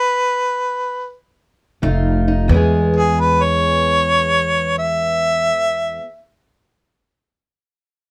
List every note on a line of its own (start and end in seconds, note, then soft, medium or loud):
0.00 1.13 B4 loud
1.82 2.45 F1 medium
1.82 2.45 F2 medium
1.82 2.47 A3 soft
1.82 2.27 D#4 medium
1.82 2.48 F4 medium
2.28 2.47 D#4 medium
2.48 5.98 E2 medium
2.48 5.50 E2 loud
2.48 6.01 E3 medium
2.48 6.02 G#3 medium
2.54 6.04 B3 medium
2.54 6.06 G#4 medium
2.96 3.22 G#4 medium
3.20 3.45 B4 medium
3.43 4.74 C#5 medium
4.79 6.22 E5 medium